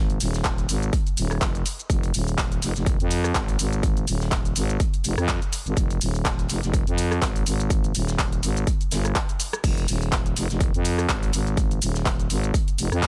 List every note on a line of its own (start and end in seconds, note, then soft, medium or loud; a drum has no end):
0.00 0.19 G#1 medium
0.10 closed hi-hat medium
0.10 shaker soft
0.20 0.67 D#1 loud
0.20 snare soft
0.20 closed hi-hat medium
0.20 open hi-hat loud
0.20 shaker medium
0.34 snare medium
0.34 shaker soft
0.44 kick loud
0.44 snare loud
0.44 clap loud
0.44 closed hi-hat loud
0.44 closed hi-hat medium
0.44 shaker soft
0.58 closed hi-hat soft
0.58 shaker soft
0.69 0.91 G#1 medium
0.69 closed hi-hat medium
0.69 open hi-hat loud
0.69 shaker medium
0.82 closed hi-hat soft
0.82 shaker soft
0.93 kick loud
0.93 closed hi-hat medium
0.93 shaker soft
1.07 closed hi-hat medium
1.07 shaker soft
1.17 1.40 D#1 loud
1.17 closed hi-hat medium
1.17 open hi-hat loud
1.17 shaker medium
1.31 cross-stick medium
1.31 shaker soft
1.41 1.64 F1 loud
1.41 kick loud
1.41 snare loud
1.41 clap loud
1.41 closed hi-hat medium
1.41 closed hi-hat loud
1.41 shaker soft
1.55 closed hi-hat medium
1.55 shaker soft
1.66 closed hi-hat medium
1.66 open hi-hat loud
1.66 shaker medium
1.79 closed hi-hat soft
1.79 shaker soft
1.90 2.12 F1 loud
1.90 kick loud
1.90 closed hi-hat medium
1.90 shaker soft
2.03 closed hi-hat medium
2.03 closed hi-hat soft
2.03 shaker soft
2.14 2.61 D#1 loud
2.14 closed hi-hat medium
2.14 open hi-hat loud
2.14 shaker medium
2.27 closed hi-hat soft
2.27 shaker soft
2.38 kick loud
2.38 snare loud
2.38 clap loud
2.38 closed hi-hat medium
2.38 closed hi-hat loud
2.38 shaker soft
2.52 closed hi-hat medium
2.52 shaker soft
2.62 2.74 F1 loud
2.62 snare soft
2.62 closed hi-hat medium
2.62 open hi-hat loud
2.62 shaker medium
2.76 2.98 F1 loud
2.76 snare soft
2.76 closed hi-hat soft
2.76 shaker soft
2.86 kick loud
2.86 closed hi-hat medium
2.86 shaker soft
3.00 3.33 F2 medium
3.00 closed hi-hat medium
3.00 shaker soft
3.11 closed hi-hat medium
3.11 open hi-hat loud
3.11 shaker medium
3.24 cross-stick medium
3.24 shaker soft
3.34 3.57 G#1 loud
3.34 kick loud
3.34 snare loud
3.34 clap loud
3.34 closed hi-hat medium
3.34 shaker soft
3.48 closed hi-hat soft
3.48 closed hi-hat medium
3.48 shaker soft
3.59 4.06 G#1 loud
3.59 closed hi-hat medium
3.59 open hi-hat loud
3.59 shaker medium
3.73 closed hi-hat soft
3.73 shaker soft
3.83 kick loud
3.83 closed hi-hat medium
3.83 shaker soft
3.97 closed hi-hat medium
3.97 shaker soft
4.07 4.54 D#1 loud
4.07 closed hi-hat medium
4.07 open hi-hat loud
4.07 shaker medium
4.21 snare medium
4.21 shaker soft
4.31 kick loud
4.31 snare loud
4.31 clap loud
4.31 closed hi-hat medium
4.31 shaker soft
4.45 closed hi-hat medium
4.45 shaker soft
4.56 4.78 G#1 loud
4.56 closed hi-hat medium
4.56 open hi-hat loud
4.56 shaker medium
4.69 closed hi-hat soft
4.69 shaker soft
4.80 kick loud
4.80 closed hi-hat medium
4.80 shaker soft
4.94 closed hi-hat medium
4.94 shaker soft
5.04 5.16 F1 loud
5.04 closed hi-hat medium
5.04 open hi-hat loud
5.04 shaker medium
5.18 5.40 F2 loud
5.18 cross-stick medium
5.18 shaker soft
5.28 kick loud
5.28 snare loud
5.28 clap loud
5.28 closed hi-hat medium
5.28 shaker soft
5.42 closed hi-hat medium
5.42 shaker soft
5.53 closed hi-hat medium
5.53 open hi-hat loud
5.53 shaker medium
5.66 5.75 G#1 medium
5.66 closed hi-hat soft
5.66 shaker soft
5.77 5.99 F1 medium
5.77 kick loud
5.77 closed hi-hat medium
5.77 shaker medium
5.91 closed hi-hat soft
5.91 closed hi-hat medium
5.91 shaker soft
6.01 6.48 D#1 loud
6.01 closed hi-hat medium
6.01 open hi-hat loud
6.01 shaker medium
6.14 closed hi-hat soft
6.14 shaker soft
6.25 kick loud
6.25 snare loud
6.25 clap loud
6.25 closed hi-hat loud
6.25 closed hi-hat medium
6.25 shaker soft
6.39 closed hi-hat medium
6.39 shaker soft
6.49 6.61 F1 loud
6.49 snare soft
6.49 closed hi-hat medium
6.49 open hi-hat loud
6.49 shaker medium
6.63 6.85 F1 loud
6.63 snare medium
6.63 closed hi-hat soft
6.63 shaker soft
6.74 kick loud
6.74 closed hi-hat medium
6.74 shaker soft
6.87 7.20 F2 medium
6.87 closed hi-hat medium
6.87 shaker soft
6.98 closed hi-hat medium
6.98 open hi-hat loud
6.98 shaker medium
7.12 cross-stick medium
7.12 shaker soft
7.22 7.44 G#1 loud
7.22 kick loud
7.22 snare loud
7.22 clap loud
7.22 closed hi-hat medium
7.22 shaker soft
7.36 closed hi-hat medium
7.36 closed hi-hat soft
7.36 shaker soft
7.46 7.93 G#1 loud
7.46 closed hi-hat medium
7.46 open hi-hat loud
7.46 shaker medium
7.60 closed hi-hat soft
7.60 shaker soft
7.70 kick loud
7.70 closed hi-hat medium
7.70 shaker soft
7.84 closed hi-hat medium
7.84 shaker soft
7.94 8.41 D#1 loud
7.94 closed hi-hat medium
7.94 open hi-hat loud
7.94 shaker medium
8.08 snare medium
8.08 closed hi-hat soft
8.08 shaker soft
8.19 kick loud
8.19 snare loud
8.19 clap loud
8.19 closed hi-hat medium
8.19 shaker soft
8.33 closed hi-hat medium
8.33 shaker soft
8.43 8.65 G#1 loud
8.43 closed hi-hat medium
8.43 open hi-hat loud
8.43 shaker medium
8.57 closed hi-hat soft
8.57 shaker soft
8.67 kick loud
8.67 closed hi-hat medium
8.67 shaker soft
8.81 closed hi-hat medium
8.81 shaker soft
8.91 9.14 G1 loud
8.91 snare loud
8.91 closed hi-hat medium
8.91 open hi-hat loud
8.91 shaker medium
9.05 cross-stick medium
9.05 closed hi-hat soft
9.05 shaker soft
9.15 kick loud
9.15 snare loud
9.15 clap loud
9.15 closed hi-hat medium
9.15 shaker soft
9.29 closed hi-hat medium
9.29 shaker soft
9.40 closed hi-hat medium
9.40 open hi-hat loud
9.40 shaker medium
9.53 cross-stick medium
9.53 closed hi-hat soft
9.53 shaker soft
9.64 9.86 F1 loud
9.64 kick loud
9.64 closed hi-hat medium
9.64 crash medium
9.64 shaker soft
9.77 closed hi-hat soft
9.77 closed hi-hat medium
9.77 shaker soft
9.88 10.35 D#1 loud
9.88 closed hi-hat medium
9.88 open hi-hat loud
9.88 shaker medium
10.02 closed hi-hat soft
10.02 shaker soft
10.12 kick loud
10.12 snare loud
10.12 clap loud
10.12 closed hi-hat medium
10.12 shaker soft
10.26 closed hi-hat medium
10.26 shaker soft
10.36 10.48 F1 loud
10.36 snare medium
10.36 closed hi-hat medium
10.36 open hi-hat loud
10.36 shaker medium
10.50 10.72 F1 loud
10.50 snare medium
10.50 closed hi-hat soft
10.50 shaker soft
10.60 kick loud
10.60 closed hi-hat medium
10.60 shaker soft
10.74 11.07 F2 medium
10.74 closed hi-hat medium
10.74 shaker soft
10.85 closed hi-hat medium
10.85 open hi-hat loud
10.85 shaker medium
10.99 cross-stick medium
10.99 shaker soft
11.09 11.31 G#1 loud
11.09 kick loud
11.09 snare loud
11.09 clap loud
11.09 closed hi-hat medium
11.09 shaker soft
11.23 closed hi-hat soft
11.23 closed hi-hat medium
11.23 shaker soft
11.33 11.80 G#1 loud
11.33 closed hi-hat medium
11.33 open hi-hat loud
11.33 shaker medium
11.47 closed hi-hat soft
11.47 shaker soft
11.57 kick loud
11.57 closed hi-hat medium
11.57 shaker soft
11.71 closed hi-hat medium
11.71 shaker soft
11.81 12.28 D#1 loud
11.81 closed hi-hat medium
11.81 open hi-hat loud
11.81 shaker medium
11.95 snare medium
11.95 shaker soft
12.06 kick loud
12.06 snare loud
12.06 clap loud
12.06 closed hi-hat medium
12.06 shaker soft
12.20 closed hi-hat medium
12.20 shaker soft
12.30 12.53 G#1 loud
12.30 closed hi-hat medium
12.30 open hi-hat loud
12.30 shaker medium
12.44 closed hi-hat soft
12.44 shaker soft
12.54 kick loud
12.54 closed hi-hat medium
12.54 closed hi-hat loud
12.54 shaker soft
12.68 closed hi-hat medium
12.68 shaker soft
12.78 12.90 F1 loud
12.78 closed hi-hat medium
12.78 open hi-hat loud
12.78 shaker medium
12.92 13.07 F2 loud
12.92 cross-stick medium
12.92 shaker soft
13.03 kick loud
13.03 snare loud
13.03 clap loud
13.03 closed hi-hat medium
13.03 shaker soft